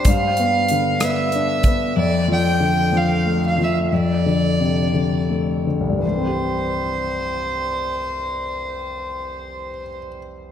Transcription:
<<
  \new Staff \with { instrumentName = "Violin" } { \time 6/8 \key c \major \tempo 4. = 57 f''4. e''4. | d''8 g''4 f''8. f''16 e''8 | d''2 r4 | c''2.~ |
c''2. | }
  \new Staff \with { instrumentName = "Grand piano" } { \clef bass \time 6/8 \key c \major g,8 b8 d8 b8 d'8 b8 | f,8 f8 d8 f8 a8 f8 | f,8 d8 c8 d8 a8 d8 | <c, g, e g c' g'>2.~ |
<c, g, e g c' g'>2. | }
  \new DrumStaff \with { instrumentName = "Drums" } \drummode { \time 6/8 <hh bd>8 hh8 hh8 <hh ss>8 hh8 <hh bd>8 | r4. r4. | r4. r4. | r4. r4. |
r4. r4. | }
>>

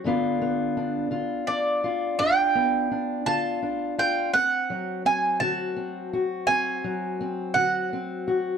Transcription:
<<
  \new Staff \with { instrumentName = "Mandolin" } { \time 12/8 \key d \mixolydian \tempo 4. = 56 r2 d''4 g''4. a''4 g''8 | fis''4 gis''8 a''4 r8 gis''4. fis''4 r8 | }
  \new Staff \with { instrumentName = "Steel-string acoustic guitar" } { \time 12/8 \key d \mixolydian << { <d b d' f'>8 b8 d'8 f'8 d'8 f'8 d'8 b8 d'8 f'8 d'8 f'8 | c'8 fis8 c'8 fis'8 c'8 fis'8 c'8 fis8 c'8 fis'8 c'8 fis'8 | } \\ { g,4 r8 d4 r8 g,4 r8 d4 r8 | d,4 r8 d4 r8 d,4 r8 d4 r8 | } >> }
>>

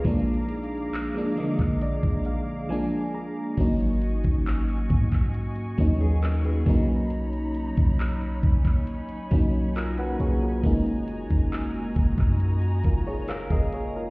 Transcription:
<<
  \new Staff \with { instrumentName = "String section" } { \time 4/4 \key aes \dorian \tempo 4 = 68 << { <aes' f'' d'''>1 | <ges' ees'' des'''>2.~ <ges' ees'' des'''>8 <dis' cis'' b''>8~ | <dis' cis'' b''>1 | <ges' ees'' bes''>1 | } \\ { bes''1 | aes''2.~ aes''8 ais''8~ | ais''4. aes''2~ aes''8~ | aes''1 | } >> }
  \new Staff \with { instrumentName = "Steel-string acoustic guitar" } { \time 4/4 \key aes \dorian r1 | r2 r8. <ces' aes'>16 <des' bes'>16 <ces' aes'>8 r16 | r1 | r2 r8. <f' des''>16 <des' bes'>16 aes'8. | }
  \new Staff \with { instrumentName = "FM electric piano" } { \time 4/4 \key aes \dorian <ees' aes'>16 r4 r16 ees''8 d''8 f''8 aes''8 bes''8 | r1 | r2. <f' ais' ais''>16 <fis' b' fis''>16 <aes' cis''>16 <f' ais'>16~ | <f' ais'>16 r2 r16 <f' bes'>16 <aes' des''>16 <bes' f''>16 <bes' ees''>16 <aes' des''>16 <f' bes'>16 | }
  \new Staff \with { instrumentName = "FM electric piano" } { \time 4/4 \key aes \dorian <f aes bes d'>4 r16 <f aes bes d'>16 <d f aes bes>4. <f aes bes d'>8. r16 | <ges bes des' ees'>4. r4 <ges bes des' ees'>4 <fis ais cis' dis'>8~ | <fis ais cis' dis'>4 r4. <fis ais cis' dis'>4~ <fis ais cis' dis'>16 r16 | <aes bes des' ees'>4. r2 r8 | }
  \new Staff \with { instrumentName = "808-style bass" } { \clef bass \time 4/4 \key aes \dorian bes,,4 r8. bes,,8 bes,,8. r4 | aes,,8. aes,,8. aes,4 ees,4 b,,8~ | b,,8. b,,8. b,,8 r8 b,,4 b,,8 | ges,,8. ges,,8. ges,,16 ges,8. ges,,8. ges,,8. | }
  \new DrumStaff \with { instrumentName = "Drums" } \drummode { \time 4/4 \tuplet 3/2 { <hh bd>16 hh16 hh16 hh16 hh16 hh16 } <hc hh>8 hh16 <hc bd>16 hh16 bd16 hh8 r4 | <cymc hh bd>16 hh16 hh16 <hh bd>16 <hc hh>16 hh16 <hh bd>16 <hc hh bd>16 hh16 hh16 <hh bd>8 <hc hh>16 hh16 <hh bd>8 | hh16 hh16 hh16 <hh bd>16 <hc hh>16 hh16 <hh bd>16 <hc hh bd>16 hh16 hh16 <hh bd>8 <hc hh>16 hh16 hh8 | <hh bd>16 hh16 hh16 <hh bd>16 <hc hh>16 hh16 <hh bd>16 <hc hh bd>16 hh16 hh16 <hh bd>8 <hc hh>16 <hh bd>16 hh8 | }
>>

